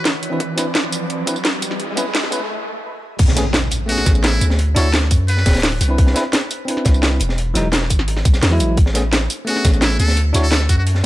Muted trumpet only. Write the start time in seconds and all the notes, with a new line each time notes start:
3.89 F#4
4.24 E4
4.76 A4
5.28 B4
9.47 F#4
9.82 E4
9.99 A4
10.43 A4
10.69 F#4
10.78 F#4